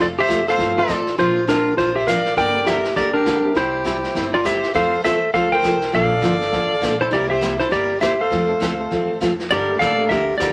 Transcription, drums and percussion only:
0.29 kick, snare, hi-hat pedal
0.47 snare
0.59 brush sweep, kick, snare
0.89 kick, snare, hi-hat pedal
1.07 snare
1.18 brush sweep, kick, snare
1.48 kick, snare, hi-hat pedal
1.78 brush sweep, kick, snare
2.07 kick, snare, hi-hat pedal
2.26 snare
2.37 brush sweep, kick, snare
2.66 kick, snare, hi-hat pedal
2.84 snare
2.96 brush sweep, kick, snare
3.26 kick, snare, hi-hat pedal
3.55 brush sweep, kick, snare
3.86 kick, snare, hi-hat pedal
4.04 snare
4.15 brush sweep, kick, snare
4.45 kick, snare, hi-hat pedal
4.63 snare
4.75 brush sweep, kick, snare
5.04 kick, snare, hi-hat pedal
5.34 brush sweep, kick, snare
5.64 kick, snare, hi-hat pedal
5.81 snare
5.93 brush sweep, kick, snare
6.23 kick, snare, hi-hat pedal
6.41 snare
6.53 brush sweep, kick, snare
6.83 kick, snare, hi-hat pedal
7.12 brush sweep, kick, snare
7.42 kick, snare, hi-hat pedal
7.60 snare
7.72 brush sweep, kick, snare
8.02 kick, snare, hi-hat pedal
8.32 brush sweep, kick, snare
8.61 kick, snare, hi-hat pedal
8.91 brush sweep, kick, snare
9.21 kick, snare, hi-hat pedal
9.39 snare
9.51 brush sweep, kick, snare
9.81 kick, snare, hi-hat pedal
10.10 brush sweep, kick, snare
10.40 kick, snare, hi-hat pedal

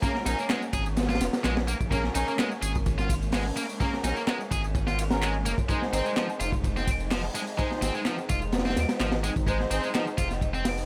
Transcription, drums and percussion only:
0.03 kick, ride, tambourine
0.15 snare
0.25 snare, ride, tambourine
0.39 tambourine
0.50 snare, clap, ride, tambourine
0.62 tambourine
0.73 kick, ride, tambourine
0.86 tambourine
0.96 snare, ride, tambourine
1.03 snare, ride
1.09 snare, ride, tambourine
1.15 snare, ride
1.21 snare, ride, tambourine
1.33 snare, ride, tambourine
1.44 snare, clap, ride, tambourine
1.57 snare, ride
1.67 ride, tambourine
1.81 kick, tambourine
1.91 kick, ride, tambourine
2.04 snare
2.15 ride, tambourine
2.28 tambourine
2.39 snare, clap, ride, tambourine
2.51 tambourine
2.62 ride, tambourine
2.75 kick, tambourine
2.86 kick, ride, tambourine
2.99 snare, tambourine
3.09 kick, ride, tambourine
3.22 tambourine
3.32 snare, clap, open hi-hat, tambourine
3.46 ride
3.56 ride, tambourine
3.69 tambourine
3.81 kick, ride, tambourine
3.93 snare
4.04 snare, ride, tambourine
4.17 tambourine
4.27 snare, clap, ride, tambourine
4.41 tambourine
4.51 kick, ride, tambourine
4.64 tambourine
4.75 kick, ride, tambourine
4.87 snare, tambourine
4.98 ride, tambourine
5.11 snare, tambourine
5.22 clap, ride, tambourine
5.34 ride
5.45 ride, tambourine
5.58 kick, tambourine
5.69 kick, ride, tambourine
5.82 snare
5.93 ride, tambourine
6.06 tambourine
6.17 snare, clap, ride, tambourine
6.29 tambourine
6.40 ride, tambourine
6.52 kick, tambourine
6.64 kick, ride, tambourine
6.77 snare, tambourine
6.87 kick, ride, tambourine
7.00 tambourine
7.11 snare, clap, open hi-hat, tambourine
7.24 ride
7.35 ride, tambourine
7.47 tambourine
7.59 kick, ride, tambourine
7.71 snare
7.82 snare, ride, tambourine
7.95 tambourine
8.05 snare, clap, ride, tambourine
8.18 tambourine
8.29 kick, ride, tambourine
8.42 tambourine
8.52 snare, ride, tambourine
8.58 snare, ride
8.65 snare, ride, tambourine
8.70 snare, ride
8.76 snare, ride, tambourine
8.89 snare, ride, tambourine
9.00 snare, clap, ride, tambourine
9.12 snare, ride
9.24 ride, tambourine
9.36 kick, tambourine
9.47 kick, ride, tambourine
9.60 snare
9.71 ride, tambourine
9.84 tambourine
9.94 snare, clap, ride, tambourine
10.07 tambourine
10.18 kick, ride, tambourine
10.31 snare, tambourine
10.41 kick, ride, tambourine
10.54 tambourine
10.65 snare, open hi-hat, ride, tambourine
10.77 ride, tambourine

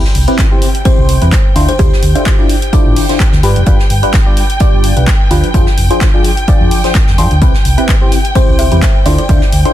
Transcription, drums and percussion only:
0.05 snare
0.15 closed hi-hat, open hi-hat
0.28 closed hi-hat
0.38 kick, snare, clap, closed hi-hat
0.62 closed hi-hat, open hi-hat
0.75 closed hi-hat
0.85 kick, closed hi-hat
1.09 closed hi-hat, open hi-hat
1.22 closed hi-hat
1.32 kick, snare, clap, closed hi-hat
1.55 closed hi-hat, open hi-hat
1.69 closed hi-hat
1.79 kick, closed hi-hat
1.93 snare
2.03 closed hi-hat, open hi-hat
2.15 closed hi-hat
2.26 kick, snare, clap, closed hi-hat
2.49 closed hi-hat, open hi-hat
2.62 closed hi-hat
2.73 kick, closed hi-hat
2.96 open hi-hat
3.09 snare, closed hi-hat
3.20 kick, snare, clap, closed hi-hat
3.33 snare
3.43 closed hi-hat, open hi-hat
3.56 closed hi-hat
3.66 kick, closed hi-hat
3.79 snare
3.90 closed hi-hat, open hi-hat
4.03 closed hi-hat
4.14 kick, snare, clap, closed hi-hat
4.37 closed hi-hat, open hi-hat
4.50 closed hi-hat
4.60 kick, closed hi-hat
4.84 closed hi-hat, open hi-hat
4.97 closed hi-hat
5.07 kick, snare, clap, closed hi-hat
5.31 closed hi-hat, open hi-hat
5.44 closed hi-hat
5.54 kick, closed hi-hat
5.67 snare
5.78 closed hi-hat, open hi-hat
5.91 closed hi-hat
6.01 kick, snare, clap, closed hi-hat
6.24 closed hi-hat, open hi-hat
6.37 closed hi-hat
6.48 kick, closed hi-hat
6.71 open hi-hat
6.84 snare, closed hi-hat
6.95 kick, snare, clap, closed hi-hat
7.08 snare
7.18 closed hi-hat, open hi-hat
7.31 closed hi-hat
7.41 kick, closed hi-hat
7.54 snare
7.65 closed hi-hat, open hi-hat
7.78 closed hi-hat
7.88 kick, snare, clap, closed hi-hat
8.12 closed hi-hat, open hi-hat
8.25 closed hi-hat
8.35 kick, closed hi-hat
8.59 closed hi-hat, open hi-hat
8.72 closed hi-hat
8.82 kick, snare, clap, closed hi-hat
9.06 closed hi-hat, open hi-hat
9.18 closed hi-hat
9.29 kick, closed hi-hat
9.42 snare
9.53 closed hi-hat, open hi-hat
9.65 closed hi-hat

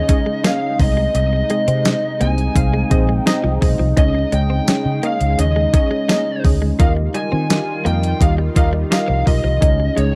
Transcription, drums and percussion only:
0.09 kick, closed hi-hat
0.44 snare, closed hi-hat, tambourine
0.80 kick, open hi-hat
1.15 closed hi-hat
1.50 closed hi-hat
1.68 closed hi-hat
1.85 snare, closed hi-hat, tambourine
2.21 closed hi-hat
2.38 closed hi-hat
2.56 kick, closed hi-hat
2.91 kick, closed hi-hat
3.27 snare, closed hi-hat, tambourine
3.62 kick, open hi-hat
3.97 kick, closed hi-hat
4.32 closed hi-hat
4.68 snare, closed hi-hat, tambourine
5.03 closed hi-hat
5.21 closed hi-hat
5.39 closed hi-hat
5.74 kick, closed hi-hat
6.09 snare, closed hi-hat, tambourine
6.45 kick, open hi-hat
6.80 kick, closed hi-hat
7.15 closed hi-hat
7.50 snare, closed hi-hat, tambourine
7.86 closed hi-hat
8.03 closed hi-hat
8.21 kick, closed hi-hat
8.56 kick, closed hi-hat
8.92 snare, closed hi-hat, tambourine
9.27 kick, open hi-hat
9.62 kick, closed hi-hat
9.97 closed hi-hat

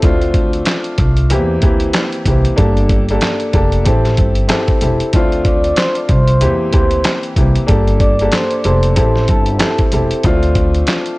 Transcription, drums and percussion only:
0.02 kick, closed hi-hat
0.21 closed hi-hat
0.34 kick, closed hi-hat
0.53 closed hi-hat
0.66 snare, clap, closed hi-hat
0.84 closed hi-hat
0.98 kick, closed hi-hat
1.17 closed hi-hat
1.30 closed hi-hat
1.62 kick, closed hi-hat
1.80 closed hi-hat
1.94 snare, clap, closed hi-hat
2.13 closed hi-hat
2.26 kick, closed hi-hat
2.45 closed hi-hat
2.58 kick, closed hi-hat
2.77 closed hi-hat
2.89 kick, closed hi-hat
3.09 closed hi-hat
3.21 snare, clap, closed hi-hat
3.40 closed hi-hat
3.53 kick, closed hi-hat
3.72 closed hi-hat
3.85 kick, closed hi-hat
4.05 snare, closed hi-hat
4.17 kick, closed hi-hat
4.35 closed hi-hat
4.49 snare, clap, closed hi-hat
4.68 kick, closed hi-hat
4.81 closed hi-hat
5.00 closed hi-hat
5.13 kick, closed hi-hat
5.32 closed hi-hat
5.45 kick, closed hi-hat
5.64 closed hi-hat
5.76 snare, clap, closed hi-hat
5.95 closed hi-hat
6.09 kick, closed hi-hat
6.28 closed hi-hat
6.41 closed hi-hat
6.73 kick, closed hi-hat
6.91 closed hi-hat
7.04 snare, clap, closed hi-hat
7.23 closed hi-hat
7.36 kick, closed hi-hat
7.55 closed hi-hat
7.68 kick, closed hi-hat
7.88 closed hi-hat
8.00 kick, closed hi-hat
8.19 closed hi-hat
8.32 snare, clap, closed hi-hat
8.50 closed hi-hat
8.64 closed hi-hat
8.83 closed hi-hat
8.96 kick, closed hi-hat
9.16 snare
9.28 kick, closed hi-hat
9.46 closed hi-hat
9.59 snare, clap, closed hi-hat
9.78 kick, closed hi-hat
9.92 closed hi-hat
10.11 closed hi-hat
10.23 kick, closed hi-hat
10.43 closed hi-hat
10.55 kick, closed hi-hat
10.74 closed hi-hat
10.87 snare, clap, closed hi-hat
11.06 closed hi-hat

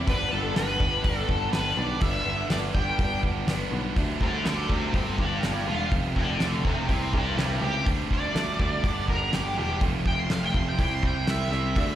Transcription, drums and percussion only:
0.07 kick, open hi-hat
0.56 snare, open hi-hat
0.80 kick
1.04 kick, open hi-hat
1.29 kick
1.53 snare, open hi-hat
2.01 kick, open hi-hat
2.50 snare, open hi-hat
2.75 kick
2.99 kick, open hi-hat
3.23 kick
3.48 snare, open hi-hat
3.96 kick, open hi-hat
4.21 kick
4.45 snare, open hi-hat
4.70 kick
4.94 kick, open hi-hat
5.18 kick
5.43 snare, open hi-hat
5.91 kick, open hi-hat
6.16 kick
6.40 snare, open hi-hat
6.65 kick
6.89 kick, open hi-hat
7.13 kick
7.38 snare, open hi-hat
7.87 kick, open hi-hat
8.11 kick
8.36 snare, open hi-hat
8.60 kick
8.84 kick, open hi-hat
9.08 kick
9.33 snare, open hi-hat
9.81 kick, open hi-hat
10.06 kick
10.30 snare, open hi-hat
10.54 kick
10.79 kick, open hi-hat
11.03 kick
11.27 snare, open hi-hat
11.52 snare
11.76 kick, open hi-hat

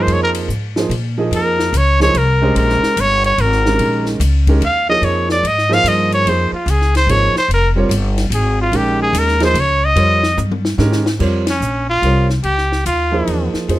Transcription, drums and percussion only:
0.08 ride
0.34 ride
0.50 hi-hat pedal
0.76 snare
0.91 ride
1.32 ride
1.59 snare
1.74 hi-hat pedal, ride
2.00 snare
2.15 ride
2.56 ride
2.69 snare
2.83 snare
2.97 hi-hat pedal, ride
3.24 ride
3.38 ride
3.52 snare
3.66 snare
3.79 ride
4.06 snare
4.21 hi-hat pedal, ride
4.47 kick, ride
4.62 ride
5.03 ride
5.29 snare
5.45 ride
5.58 snare
5.72 snare
5.86 hi-hat pedal, ride
6.12 ride
6.27 ride
6.68 hi-hat pedal, ride
6.81 snare
6.95 snare, ride
7.09 ride
7.36 snare
7.51 ride
7.91 hi-hat pedal, ride
8.18 snare, ride
8.32 hi-hat pedal, ride
8.73 ride
9.14 hi-hat pedal, ride
9.28 snare
9.40 snare, ride
9.55 ride
9.96 ride
10.23 snare
10.38 hi-hat pedal, mid tom
10.51 mid tom
10.65 snare
10.79 snare
10.92 snare
11.06 snare
11.20 kick, crash
11.47 snare, ride
11.62 hi-hat pedal
12.03 ride
12.30 snare
12.43 ride
12.58 snare
12.72 snare
12.86 hi-hat pedal, ride
13.27 ride
13.54 snare
13.69 ride

